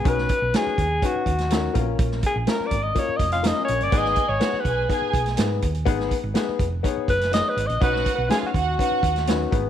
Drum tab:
HH |x-x-x-x-x-xxx-x-|x-x-x-x-x-xxx-xx|x-x-x-x-x-xxx-xx|x-x-x-x-x-xxx-xx|
SD |-o--o------oo---|-o--o-------o---|-o--o------oo---|-o--o------oo---|
BD |o-o---o-o-o---o-|o-o---o-o-o-----|o-o---o-o-o---o-|o-o---o-o-o-----|

HH |x-x-x-x-x-xxx-x-|
SD |-o--o------oo---|
BD |o-o---o-o-o---o-|